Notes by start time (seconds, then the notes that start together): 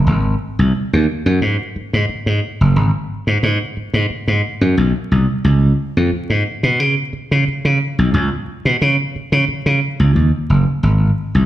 0.07 G#1
0.59 C2
0.75 muted slap bass stroke
0.93 D#2
1.26 F#2
1.41 G#2
1.76 muted slap bass stroke
1.93 G#2
2.09 muted slap bass stroke
2.26 G#2
2.61 F#1
2.76 G#1
3.27 G#2
3.43 G#2
3.77 muted slap bass stroke
3.94 G#2
4.10 muted slap bass stroke
4.28 G#2
4.61 F#2
4.77 B1
5.12 C2
5.44 C#2
5.97 F2
6.12 muted slap bass stroke
6.30 G#2
6.63 B2
6.80 C#3
7.13 muted slap bass stroke
7.31 C#3
7.48 muted slap bass stroke
7.65 C#3
7.99 B1
8.14 C#2
8.65 B2
8.81 C#3
9.16 muted slap bass stroke
9.32 C#3
9.48 muted slap bass stroke
9.66 C#3
10.00 C#2
10.16 D#2
10.50 F#1
10.83 G#1
11.35 C2